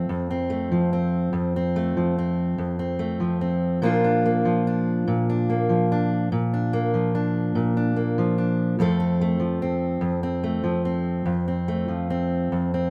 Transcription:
steel-string acoustic guitar
Already playing: F3 A3 C4
0.09 F2
0.30 C4
0.50 A3
0.72 F3
0.93 C4
1.33 F2
1.56 C4
1.76 A3
1.97 F3
2.18 C4
2.58 F2
2.79 C4
2.99 A3
3.20 F3
3.41 C4
3.82 A#2 F3 A#3 D4 F4
4.04 D4
4.26 A#3
4.45 F3
4.67 D4
5.07 A#2
5.29 D4
5.50 A#3
5.69 F3
5.92 D4
6.32 A#2
6.53 D4
6.73 A#3
6.94 F3
7.15 D4
7.55 A#2
7.77 D4
7.96 A#3
8.18 F3
8.38 D4
8.79 F2 F3 A3 C4 A4
9.00 C4
9.21 A3
9.40 F3
9.62 C4
10.01 F2
10.23 C4
10.44 A3
10.64 F3
10.85 C4
11.26 F2
11.48 C4
11.68 A3
11.88 F3
12.10 C4
12.52 F2
12.74 C4

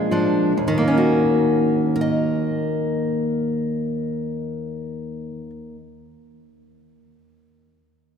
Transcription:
steel-string acoustic guitar
Already playing: A#2 F3 G#3 D4 F4
0.11 F3 D4
0.57 D#2
0.68 D#3
0.78 A#3
0.88 C#4
0.97 F#4
1.96 A#4
2.01 D#5

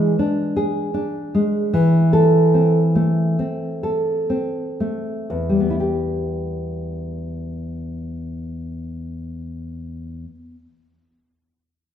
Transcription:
nylon-string guitar
Already playing: E3 G#3 D4
0.19 D4
0.56 G#4
0.94 D4
1.35 G#3
1.74 E3
2.13 A4
2.54 C4
2.95 A3
3.39 C4
3.83 A4
4.30 C4
4.80 A3
5.30 E2
5.49 G3
5.60 B3
5.70 E4
5.80 G4

